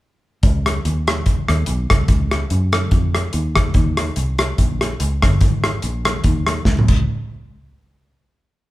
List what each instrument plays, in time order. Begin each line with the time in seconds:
0.43 fingered electric bass C#2, kick, closed hi-hat
0.66 cross-stick, closed hi-hat
0.85 fingered electric bass D#2, closed hi-hat
1.07 cross-stick, closed hi-hat
1.26 fingered electric bass C#2, kick, closed hi-hat
1.48 fingered electric bass D#2, cross-stick, closed hi-hat
1.66 fingered electric bass B1, closed hi-hat
1.90 fingered electric bass C2, kick, cross-stick, closed hi-hat
2.08 fingered electric bass C#2, kick, closed hi-hat
2.31 cross-stick, closed hi-hat
2.50 fingered electric bass F#2, closed hi-hat
2.73 cross-stick, closed hi-hat
2.91 fingered electric bass F2, kick, closed hi-hat
3.15 cross-stick, closed hi-hat
3.33 fingered electric bass D#2, closed hi-hat
3.56 kick, cross-stick, closed hi-hat
3.74 fingered electric bass D#2, kick, closed hi-hat
3.97 cross-stick, closed hi-hat
4.16 fingered electric bass C2, closed hi-hat
4.39 cross-stick, closed hi-hat
4.58 fingered electric bass A#1, kick, closed hi-hat
4.81 cross-stick, closed hi-hat
5.00 fingered electric bass C#2, closed hi-hat
5.22 fingered electric bass G1, kick, cross-stick, closed hi-hat
5.41 fingered electric bass G#1, kick, closed hi-hat
5.64 cross-stick, closed hi-hat
5.82 fingered electric bass A#1, closed hi-hat
6.05 cross-stick, closed hi-hat
6.24 fingered electric bass D#2, kick, closed hi-hat
6.47 cross-stick, closed hi-hat
6.65 fingered electric bass C#2, kick, snare
6.79 mid tom
6.88 fingered electric bass C#2, kick, crash